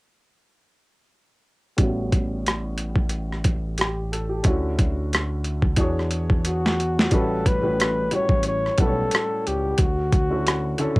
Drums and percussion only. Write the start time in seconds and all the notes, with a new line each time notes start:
1.78 kick, closed hi-hat
2.12 kick, closed hi-hat
2.46 cross-stick, closed hi-hat
2.78 closed hi-hat
2.96 kick
3.09 closed hi-hat
3.32 cross-stick
3.44 kick, closed hi-hat
3.78 cross-stick, closed hi-hat
4.13 closed hi-hat
4.44 kick, closed hi-hat
4.79 kick, closed hi-hat
5.13 cross-stick, closed hi-hat
5.44 closed hi-hat
5.62 kick
5.76 kick, closed hi-hat
5.99 cross-stick
6.11 closed hi-hat
6.30 kick
6.45 closed hi-hat
6.66 snare
6.80 closed hi-hat
6.99 snare
7.11 kick, closed hi-hat
7.46 kick, closed hi-hat
7.80 cross-stick, closed hi-hat
8.11 closed hi-hat
8.29 kick
8.43 closed hi-hat
8.66 cross-stick
8.78 kick, closed hi-hat
9.11 cross-stick, closed hi-hat
9.47 closed hi-hat
9.78 kick, closed hi-hat
10.12 kick, closed hi-hat
10.47 cross-stick, closed hi-hat
10.78 closed hi-hat
10.96 kick